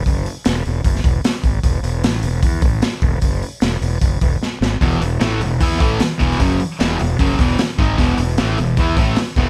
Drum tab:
HH |o-o-o-o-o-o-o-o-|o-o-o-o-o-o-o-o-|o-o-o-o-o-o-----|o-o-o-o-o-o-o-o-|
SD |----o----o--o---|----o-------o---|----o-------o-o-|----o----o--o--o|
BD |o-------o-o---o-|o-------o-o---o-|o-------o-o-----|o-------o-o---o-|

HH |o-o-o-o-o-o-o-o-|o-o-o-o-o-o-o-o-|
SD |----o-------o---|----o-------o---|
BD |o-------o-o---o-|o-------o-o---o-|